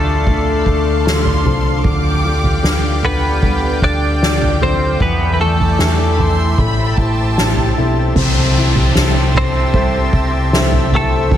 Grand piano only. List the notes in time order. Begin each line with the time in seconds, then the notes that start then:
Already playing: D3
0.28 D3
0.68 D3
1.08 D3
1.45 D3
1.85 D3
2.25 D3
2.63 D3
3.04 D3
3.43 D3
3.83 D3
4.23 D3
4.62 D3
5.01 E3
5.40 E3
5.79 E3
6.20 E3
6.59 A3
6.98 E4
7.38 G4
7.78 E4
8.17 C4
9.74 A4 C5 E5
10.53 A4 C5 E5
11.32 F3